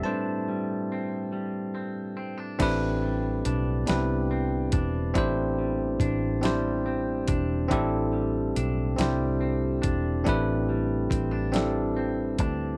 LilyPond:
<<
  \new Staff \with { instrumentName = "Tine electric piano" } { \time 6/8 \key a \minor \tempo 4. = 47 << { <c'' a''>2 r4 | <c' d' e' g' b'>4 r8 <b c' d' e' g' b'>4 r8 | <c' d' e' g' c''>4 r8 <c' d' e' g' c''>4 r8 | <c' d' e' g' a'>4 r8 <c' d' e' g' c''>4 r8 |
<c' d' e' g' b'>4 r8 <c' d' e' g' a'>4 r8 | } \\ { <g c' d' b'>4. r4. | r2. | r2. | r2. |
r2. | } >> }
  \new Staff \with { instrumentName = "Clean electric guitar" } { \time 6/8 \key a \minor <a, g c' d'>8 g8 c'8 g8 c'8 c'16 d'16 | a,8 g8 d'8 g8 c'8 d'8 | a,8 g8 d'8 g8 c'8 d'8 | a,8 g8 d'8 g8 c'8 d'8 |
a,8 g8 c'16 d'16 g8 c'8 d'8 | }
  \new Staff \with { instrumentName = "Fingered electric bass" } { \clef bass \time 6/8 \key a \minor r2. | a,,4 b,,8 c,4 e,,8 | a,,4 a,,4. e,,8 | a,,4 b,,8 c,4 e,,8 |
a,,4 a,,4. d,8 | }
  \new DrumStaff \with { instrumentName = "Drums" } \drummode { \time 6/8 r4. r4. | <cymc hh bd>4 hh8 <hh sn>4 <hh bd>8 | <hh bd>4 <hh bd>8 <hh sn>4 <hh bd>8 | <hh bd>4 hh8 <hh sn>4 <hh bd>8 |
<hh bd>4 <hh bd>8 <hh sn>4 <hh bd>8 | }
>>